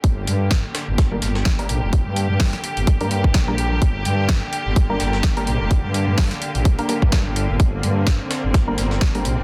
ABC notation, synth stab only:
X:1
M:4/4
L:1/16
Q:"Swing 16ths" 1/4=127
K:Gm
V:1 name="Synth stab"
z8 z [G,B,DB]4 [G,B,DB] z2 | z8 z [G,B,DB]4 [G,B,DB] z2 | z8 z [G,B,DB]4 [G,B,DB] z2 | z8 z [G,B,DB] [G,B,DB] z4 z |
z8 z [G,B,DB]4 [G,B,DB] z2 |]